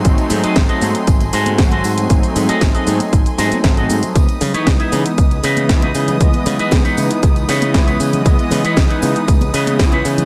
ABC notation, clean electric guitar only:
X:1
M:4/4
L:1/16
Q:1/4=117
K:C#m
V:1 name="Clean electric guitar"
z3 [FGAd] z [FGAd]3 z2 [FGA^B]2 z [FGAB]3 | z3 [FGAd] z [FGAd]3 z2 [FGA^B]2 z [FGAd]3 | z3 [DEBc] z [DEBe]3 z2 [DEBd]2 z [DEBd]3 | z3 [DEBd] z [DEBc]3 z2 [DEBc]2 z [DEBc]3 |
z3 [DEBc] z [DEBc]3 z2 [DEBd]2 z [DEBc]3 |]